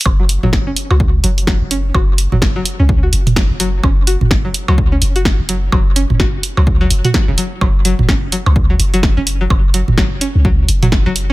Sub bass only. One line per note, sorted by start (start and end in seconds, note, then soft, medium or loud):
0.06 0.38 F#1 loud
0.43 0.73 F#1 medium
0.91 1.20 C#2 medium
1.24 1.56 F#1 medium
1.61 1.91 F#1 medium
1.95 2.27 F#1 loud
2.32 2.62 F#1 medium
2.80 3.09 C#2 medium
3.13 3.46 F#1 medium
3.50 3.80 F#1 medium
3.83 4.16 F#1 loud
4.21 4.51 F#1 medium
4.69 4.98 C#2 medium
5.02 5.34 F#1 medium
5.39 5.69 F#1 medium
5.72 6.05 F#1 loud
6.10 6.40 F#1 medium
6.57 6.87 C#2 medium
6.91 7.02 F#1 medium
7.28 7.36 E1 loud
7.61 7.94 F#1 loud
7.99 8.29 F#1 medium
8.46 8.76 C#2 loud
8.79 9.12 F#1 medium
9.17 9.47 F#1 medium
9.50 9.83 F#1 loud
9.88 10.18 F#1 medium
10.35 10.65 C#2 loud
10.69 11.01 F#1 loud
11.06 11.33 F#1 medium